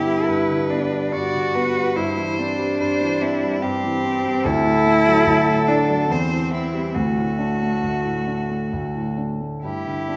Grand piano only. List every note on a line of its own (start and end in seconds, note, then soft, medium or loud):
0.00 0.26 G2 medium
0.00 0.49 D3 soft
0.00 0.19 B3 soft
0.06 0.40 G3 soft
0.28 1.12 G2 medium
0.49 0.83 D3 soft
0.70 1.04 B3 soft
0.91 1.25 G3 soft
1.13 1.94 G2 medium
1.35 1.67 D3 soft
1.55 1.88 B3 soft
1.75 1.96 G3 soft
1.97 2.79 G2 medium
2.17 2.50 E3 soft
2.39 2.71 C4 soft
2.59 2.92 G3 medium
2.80 3.62 G2 medium
3.01 3.34 E3 soft
3.21 3.54 C4 soft
3.43 3.76 G3 soft
3.64 4.43 G2 medium
3.84 4.17 E3 medium
4.05 4.37 C4 medium
4.25 4.45 G3 medium
4.45 5.25 D2 medium
4.65 4.98 A2 medium
4.86 5.19 A3 medium
5.06 5.39 F#3 medium
5.27 6.07 D2 medium
5.48 5.81 A2 medium
5.69 6.01 A3 medium
5.89 6.10 F#3 medium
6.10 6.92 E2 medium
6.30 6.64 E3 soft
6.52 6.86 C4 soft
6.74 6.95 G3 soft
6.96 7.82 D2 medium
7.17 7.52 A2 soft
7.39 7.74 D4 soft
7.62 7.97 A3 soft
7.83 8.71 D2 soft
8.05 8.41 A2 soft
8.27 8.63 D4 soft
8.50 8.86 A3 soft
8.73 9.61 D2 soft
8.95 9.32 A2 soft
9.18 9.54 D4 soft
9.40 9.63 A3 soft
9.64 10.16 G2 soft
9.86 10.16 D3 soft
10.09 10.16 D4 soft